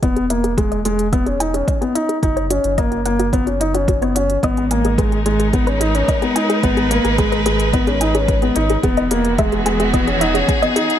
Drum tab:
HH |xxxxxxxxxxxxxxxx|xxxxxxxxxxxxxxxx|xxxxxxxxxxxxxxxx|xxxxxxxxxxxxxxxx|
BD |o---o---o---o---|o---o---o---o---|o---o---o---o---|o---o---o---o---|

HH |xxxxxxxxxxxxxxxx|
BD |o---o---o---o---|